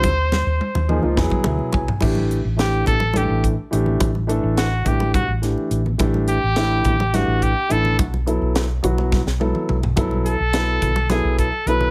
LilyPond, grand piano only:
\new Staff \with { instrumentName = "Grand piano" } { \time 7/8 \key e \phrygian \tempo 4 = 106 << { r2 r8 e''8 gis''8 | \key b \phrygian r2. r8 | r2. r8 | r2. r8 |
r2. r8 | r2. r8 | } \\ { r4. <f bes ees' aes'>16 <f bes ees' f'>16 <fis b e' gis'>4~ <fis b e' gis'>16 r16 | <e a d' g'>8. r16 <e a d' g'>8. r16 <e a d' a'>8. r16 <e a d' g'>8~ | <e a d' g'>16 r16 <e a d' a'>8. r16 <e a d' g'>8. r16 <e a d' g'>8. r16 | <e a d' g'>8. r16 <e a d' e'>8. r16 <e a d' g'>8. r16 <e a d' e'>8 |
r8 <fis b e' a'>8. r16 <fis b e' fis'>8. r16 <fis b e' a'>8. r16 | <fis b e' a'>8. r16 <fis b e' a'>8. r16 <fis b e' a'>8. r16 <fis b e' a'>8 | } >> }